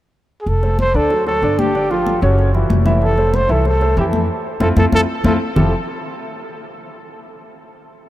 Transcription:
0.41 0.50 G#4 medium
0.46 0.91 F1 medium
0.46 0.80 A4 medium
0.46 high conga soft
0.63 0.89 A3 medium
0.63 0.89 A4 medium
0.63 0.89 C5 medium
0.63 high conga soft
0.79 0.97 C5 loud
0.79 high conga soft
0.94 1.39 D2 medium
0.94 1.08 D3 medium
0.94 1.08 D4 medium
0.94 1.26 A4 medium
0.94 1.08 D5 medium
1.10 1.24 F#3 medium
1.10 1.24 F#4 medium
1.10 1.24 A4 medium
1.10 high conga soft
1.27 1.40 F#3 medium
1.27 1.40 F#4 medium
1.27 1.60 A4 medium
1.27 1.40 A4 medium
1.27 high conga soft
1.42 2.16 G1 medium
1.42 1.69 D3 medium
1.42 1.69 D4 medium
1.42 1.69 D5 medium
1.42 high conga soft
1.59 1.92 G4 medium
1.59 high conga medium
1.75 1.88 D3 medium
1.75 1.88 D4 medium
1.75 1.88 D5 medium
1.75 high conga soft
1.91 2.17 F3 medium
1.91 2.22 F4 medium
1.91 2.17 F4 medium
1.91 2.17 G4 medium
1.91 high conga soft
2.06 high conga soft
2.22 2.67 F#1 medium
2.22 2.48 C#3 medium
2.22 2.49 C#4 medium
2.22 2.52 F#4 medium
2.22 2.49 C#5 medium
2.22 high conga soft
2.38 high conga soft
2.54 2.80 E3 medium
2.54 2.81 E4 medium
2.54 2.81 F#4 medium
2.54 high conga soft
2.70 3.44 F1 medium
2.70 high conga medium
2.86 3.12 E3 medium
2.86 3.12 E4 medium
2.86 3.12 E5 medium
2.86 high conga medium
3.02 3.37 A4 medium
3.02 high conga soft
3.17 3.44 A3 medium
3.17 3.44 A4 medium
3.17 3.44 C5 medium
3.17 high conga soft
3.34 3.53 C5 medium
3.34 high conga soft
3.49 3.94 C2 medium
3.49 3.63 E3 medium
3.49 3.63 E4 medium
3.49 3.66 A4 medium
3.49 3.63 E5 medium
3.65 3.79 A3 medium
3.65 3.79 A4 medium
3.65 3.96 A4 medium
3.65 3.79 C5 medium
3.65 high conga soft
3.81 3.94 A3 medium
3.81 3.95 A4 medium
3.81 3.95 C5 medium
3.81 high conga soft
3.97 4.27 F2 medium
3.97 4.24 E3 medium
3.97 4.24 E4 medium
3.97 4.06 G4 medium
3.97 4.24 E5 medium
3.97 high conga soft
4.13 4.29 A4 medium
4.13 high conga medium
4.60 4.72 F2 medium
4.60 4.71 C4 medium
4.60 4.71 E4 medium
4.60 4.71 F4 medium
4.60 4.69 A4 medium
4.60 high conga medium
4.76 4.88 F2 medium
4.76 4.87 C4 medium
4.76 4.87 E4 medium
4.76 4.87 F4 medium
4.76 4.85 A4 medium
4.76 high conga medium
4.92 5.04 F2 medium
4.92 5.03 C4 medium
4.92 5.03 E4 medium
4.92 5.03 F4 medium
4.92 5.02 A4 loud
4.92 high conga medium
5.24 5.36 F2 medium
5.24 5.35 C4 medium
5.24 5.35 E4 medium
5.24 5.35 F4 medium
5.24 5.34 A4 medium
5.24 high conga medium
5.55 5.71 F1 medium
5.55 5.71 F3 medium
5.55 5.71 C4 medium
5.55 5.71 E4 medium
5.55 5.71 F4 medium
5.55 5.71 G4 medium
5.55 5.71 A4 medium
5.55 5.72 A4 medium
5.55 low conga medium

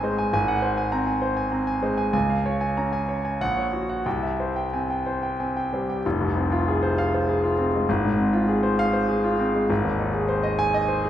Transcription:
0.00 0.28 G#1 medium
0.00 0.27 G#3 medium
0.00 0.36 C4 medium
0.00 0.04 C5 medium
0.00 0.27 C5 medium
0.00 0.36 D#5 medium
0.00 0.18 G#5 medium
0.00 0.36 A#5 medium
0.18 0.32 G#5 medium
0.33 2.10 G#1 medium
0.33 0.57 G#5 medium
0.48 0.71 F#5 medium
0.62 0.86 C5 medium
0.77 1.01 G#5 medium
0.92 1.16 C4 medium
0.92 1.07 A#5 medium
1.07 1.31 G#5 medium
1.22 1.46 C5 medium
1.37 1.61 G#5 medium
1.52 1.76 C4 medium
1.52 1.67 A#5 medium
1.67 1.92 G#5 medium
1.82 2.07 G#3 medium
1.82 2.07 C5 medium
1.98 2.12 G#5 medium
2.13 3.35 C#2 medium
2.13 2.39 G#5 medium
2.30 2.55 F5 medium
2.46 2.71 C#5 medium
2.61 2.86 G#5 medium
2.77 3.02 C#4 medium
2.77 2.93 A#5 medium
2.93 3.17 G#5 medium
3.09 3.33 C#5 medium
3.25 3.40 G#5 medium
3.41 4.04 A#1 medium
3.41 3.66 F#5 loud
3.57 3.82 C#5 medium
3.73 3.99 F#4 medium
3.89 4.06 F#5 medium
4.06 6.01 C2 medium
4.06 4.33 G5 medium
4.23 4.49 E5 medium
4.40 4.66 C5 medium
4.56 4.83 G5 medium
4.73 5.00 C4 medium
4.73 4.90 G#5 medium
4.90 5.16 G5 medium
5.06 5.32 C5 medium
5.23 5.49 G5 medium
5.40 5.66 C4 medium
5.40 5.56 G#5 medium
5.57 5.82 G5 medium
5.73 5.98 G3 medium
5.73 5.99 C5 medium
5.90 6.05 G5 medium
6.06 7.85 F1 medium
6.21 6.45 C2 medium
6.37 6.61 C4 medium
6.52 6.76 F4 medium
6.68 6.92 G#4 medium
6.83 7.06 C5 medium
6.98 7.22 F5 loud
7.14 7.37 C5 medium
7.29 7.52 G#4 medium
7.44 7.67 F4 medium
7.58 7.82 C4 medium
7.75 7.89 G#3 medium
7.89 9.66 G#1 medium
8.05 8.28 G#2 medium
8.19 8.42 C4 medium
8.33 8.57 F4 medium
8.48 8.72 G#4 medium
8.63 8.87 C5 medium
8.79 9.03 F5 loud
8.93 9.18 C5 medium
9.08 9.33 G#4 medium
9.24 9.49 F4 medium
9.39 9.64 C4 medium
9.55 9.70 G#3 medium
9.70 11.10 G#1 loud
9.85 10.08 D#2 medium
9.99 10.23 D#4 medium
10.14 10.38 G#4 medium
10.29 10.53 C5 medium
10.43 10.67 D#5 medium
10.59 10.82 G#5 loud
10.74 10.98 D#5 medium
10.88 11.10 C5 medium
11.04 11.10 G#4 medium

